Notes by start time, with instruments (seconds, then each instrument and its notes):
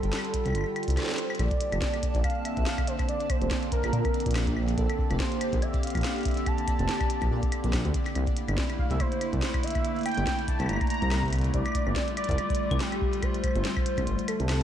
Already playing: ambient pad D3 G3 F4 A4, synth texture G4 G5, soft synth lead A4
0.03 detuned saw bass G1, closed hi-hat
0.13 snare, closed hi-hat
0.19 claves
0.25 closed hi-hat
0.34 kick, closed hi-hat
0.46 detuned saw bass C2, closed hi-hat, claves
0.48 claves
0.50 claves
0.53 detuned saw bass G1, closed hi-hat, claves
0.55 claves
0.58 claves
0.61 claves
0.64 claves
0.76 closed hi-hat, claves
0.83 closed hi-hat
0.88 detuned saw bass C2, closed hi-hat
0.90 closed hi-hat
0.97 soft synth lead C5, snare, closed hi-hat, claves
1.00 snare
1.03 snare
1.06 snare
1.09 snare, closed hi-hat
1.11 snare
1.14 snare
1.16 snare, closed hi-hat
1.30 claves
1.35 closed hi-hat
1.39 detuned saw bass A#1, ambient pad D3 A#3 C4 A5, synth texture D4 D5, soft synth lead D5, closed hi-hat, claves
1.51 kick, closed hi-hat
1.61 closed hi-hat
1.72 detuned saw bass F1, closed hi-hat, claves
1.82 kick, snare, closed hi-hat
1.94 closed hi-hat, claves
2.03 kick, closed hi-hat
2.15 detuned saw bass A#1, closed hi-hat
2.24 soft synth lead F5, kick, closed hi-hat, claves
2.30 closed hi-hat
2.45 soft synth lead E5, closed hi-hat, claves
2.57 detuned saw bass A#1, kick, closed hi-hat
2.66 soft synth lead F5, snare, closed hi-hat
2.78 kick, closed hi-hat, claves
2.87 soft synth lead C5, closed hi-hat
2.99 kick, closed hi-hat, claves
3.09 soft synth lead D5, closed hi-hat
3.20 closed hi-hat
3.30 soft synth lead C5, kick, closed hi-hat, claves
3.41 detuned saw bass F1, closed hi-hat
3.51 kick, snare, closed hi-hat, claves
3.63 closed hi-hat
3.72 soft synth lead A#4, kick, closed hi-hat
3.84 detuned saw bass A#1, closed hi-hat, claves
3.93 detuned saw bass A#2, closed hi-hat
4.05 kick, closed hi-hat, claves
4.14 closed hi-hat
4.20 closed hi-hat
4.26 detuned saw bass A#1, kick, closed hi-hat
4.31 closed hi-hat
4.35 snare, closed hi-hat, claves
4.47 kick, closed hi-hat
4.57 claves
4.68 closed hi-hat
4.77 detuned saw bass A#1, ambient pad G4, soft synth lead A4, kick, closed hi-hat
4.90 closed hi-hat, claves
4.99 kick
5.10 detuned saw bass F1, closed hi-hat, claves
5.20 soft synth lead C5, kick, snare
5.32 closed hi-hat
5.41 closed hi-hat, claves
5.53 detuned saw bass A#1, kick, closed hi-hat
5.62 soft synth lead E5, closed hi-hat, claves
5.74 kick, closed hi-hat
5.83 soft synth lead F5, closed hi-hat
5.87 closed hi-hat
5.90 closed hi-hat
5.95 detuned saw bass A#1, kick, closed hi-hat, claves
5.97 closed hi-hat
6.01 snare, closed hi-hat
6.04 closed hi-hat
6.16 closed hi-hat
6.18 closed hi-hat
6.21 closed hi-hat
6.23 kick, closed hi-hat
6.25 soft synth lead E5, closed hi-hat
6.31 closed hi-hat
6.34 closed hi-hat
6.37 closed hi-hat
6.46 soft synth lead A5, kick, closed hi-hat, claves
6.58 closed hi-hat
6.68 kick, closed hi-hat, claves
6.79 detuned saw bass F1, closed hi-hat
6.89 snare, closed hi-hat
7.01 kick, closed hi-hat, claves
7.10 closed hi-hat
7.22 detuned saw bass A#1, kick, closed hi-hat, claves
7.31 detuned saw bass A#2
7.43 kick, closed hi-hat
7.52 closed hi-hat, claves
7.64 detuned saw bass A#1, closed hi-hat
7.73 kick, snare, closed hi-hat, claves
7.85 detuned saw bass D2, closed hi-hat
7.94 kick, closed hi-hat
8.06 closed hi-hat, claves
8.15 detuned saw bass C2, ambient pad A3 A#3 E4, closed hi-hat, claves
8.27 kick, closed hi-hat
8.37 closed hi-hat
8.48 detuned saw bass G1, closed hi-hat, claves
8.58 kick, snare
8.70 closed hi-hat, claves
8.79 soft synth lead F5, kick
8.91 detuned saw bass C2, soft synth lead E5, closed hi-hat
9.00 soft synth lead C5, kick, closed hi-hat, claves
9.12 closed hi-hat
9.21 closed hi-hat, claves
9.33 detuned saw bass C2, kick, closed hi-hat
9.42 snare, closed hi-hat
9.54 kick, closed hi-hat, claves
9.63 soft synth lead E5, closed hi-hat
9.68 closed hi-hat
9.71 closed hi-hat
9.75 kick, closed hi-hat, claves
9.85 closed hi-hat
9.96 closed hi-hat
9.99 closed hi-hat
10.01 closed hi-hat
10.03 closed hi-hat
10.06 soft synth lead G5, closed hi-hat, claves
10.09 closed hi-hat
10.12 closed hi-hat
10.15 detuned saw bass G1, closed hi-hat
10.18 closed hi-hat
10.27 kick, snare, closed hi-hat, claves
10.39 closed hi-hat
10.48 soft synth lead A5, kick, closed hi-hat
10.60 detuned saw bass C2, closed hi-hat, claves
10.62 claves
10.66 detuned saw bass G1, soft synth lead A#5, closed hi-hat, claves
10.69 claves
10.73 claves
10.76 claves
10.81 kick, closed hi-hat, claves
10.87 soft synth lead A#5, closed hi-hat
10.90 closed hi-hat
10.94 closed hi-hat
11.02 detuned saw bass C2, kick, closed hi-hat
11.11 snare, closed hi-hat, claves
11.23 kick, closed hi-hat
11.26 closed hi-hat
11.28 closed hi-hat
11.30 closed hi-hat
11.33 closed hi-hat, claves
11.36 closed hi-hat
11.39 closed hi-hat
11.41 closed hi-hat
11.44 closed hi-hat
11.54 detuned saw bass C2, ambient pad D3 G3 F4, soft synth lead D5, kick, closed hi-hat
11.66 closed hi-hat, claves
11.68 claves
11.72 kick, closed hi-hat, claves
11.75 claves
11.79 claves
11.82 claves
11.86 detuned saw bass G1, claves
11.96 kick, snare, closed hi-hat
12.08 closed hi-hat
12.17 soft synth lead D5, closed hi-hat, claves
12.24 closed hi-hat
12.29 detuned saw bass C2, kick, closed hi-hat
12.31 kick, closed hi-hat
12.33 kick
12.36 kick, closed hi-hat, claves
12.50 kick, closed hi-hat
12.55 closed hi-hat
12.71 detuned saw bass C2, kick, closed hi-hat, claves
12.80 soft synth lead G4, snare, closed hi-hat
12.92 closed hi-hat, claves
13.01 kick
13.13 closed hi-hat
13.23 soft synth lead C5, kick, closed hi-hat, claves
13.34 closed hi-hat
13.44 kick, closed hi-hat, claves
13.48 claves
13.51 claves
13.55 detuned saw bass G1, closed hi-hat
13.65 snare, closed hi-hat
13.77 kick, claves
13.86 closed hi-hat
13.98 detuned saw bass C2, kick, closed hi-hat, claves
14.07 detuned saw bass G1, closed hi-hat
14.19 closed hi-hat
14.28 soft synth lead A4, closed hi-hat, claves
14.40 detuned saw bass C2, closed hi-hat
14.49 snare, closed hi-hat, claves